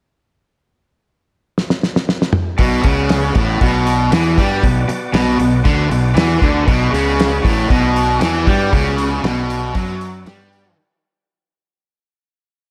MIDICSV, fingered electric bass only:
0, 0, Header, 1, 3, 480
1, 0, Start_track
1, 0, Key_signature, 2, "minor"
1, 0, Tempo, 511073
1, 513, Time_signature, 4, 2, 24, 8
1, 11930, End_track
2, 0, Start_track
2, 0, Title_t, "Fingered electric bass"
2, 0, Program_c, 0, 33
2, 2431, Note_on_c, 0, 35, 96
2, 2654, Note_off_c, 0, 35, 0
2, 2671, Note_on_c, 0, 37, 93
2, 3118, Note_off_c, 0, 37, 0
2, 3150, Note_on_c, 0, 33, 97
2, 3374, Note_off_c, 0, 33, 0
2, 3394, Note_on_c, 0, 35, 94
2, 3840, Note_off_c, 0, 35, 0
2, 3872, Note_on_c, 0, 40, 91
2, 4096, Note_off_c, 0, 40, 0
2, 4110, Note_on_c, 0, 43, 94
2, 4335, Note_off_c, 0, 43, 0
2, 4350, Note_on_c, 0, 35, 88
2, 4575, Note_off_c, 0, 35, 0
2, 4823, Note_on_c, 0, 35, 86
2, 5052, Note_off_c, 0, 35, 0
2, 5065, Note_on_c, 0, 35, 82
2, 5293, Note_off_c, 0, 35, 0
2, 5304, Note_on_c, 0, 38, 96
2, 5533, Note_off_c, 0, 38, 0
2, 5540, Note_on_c, 0, 35, 87
2, 5771, Note_off_c, 0, 35, 0
2, 5784, Note_on_c, 0, 40, 91
2, 6013, Note_off_c, 0, 40, 0
2, 6032, Note_on_c, 0, 38, 98
2, 6257, Note_off_c, 0, 38, 0
2, 6272, Note_on_c, 0, 35, 93
2, 6498, Note_off_c, 0, 35, 0
2, 6505, Note_on_c, 0, 37, 98
2, 6958, Note_off_c, 0, 37, 0
2, 6993, Note_on_c, 0, 33, 99
2, 7219, Note_off_c, 0, 33, 0
2, 7232, Note_on_c, 0, 35, 83
2, 7681, Note_off_c, 0, 35, 0
2, 7711, Note_on_c, 0, 40, 97
2, 7937, Note_off_c, 0, 40, 0
2, 7956, Note_on_c, 0, 43, 93
2, 8180, Note_off_c, 0, 43, 0
2, 8198, Note_on_c, 0, 37, 92
2, 8644, Note_off_c, 0, 37, 0
2, 8675, Note_on_c, 0, 35, 88
2, 9122, Note_off_c, 0, 35, 0
2, 9161, Note_on_c, 0, 42, 90
2, 9605, Note_off_c, 0, 42, 0
2, 9630, Note_on_c, 0, 43, 80
2, 10078, Note_off_c, 0, 43, 0
2, 11930, End_track
3, 0, Start_track
3, 0, Title_t, "Muted fingered electric bass strokes"
3, 4588, Note_on_c, 9, 29, 40
3, 4682, Note_off_c, 9, 29, 0
3, 11930, End_track
0, 0, End_of_file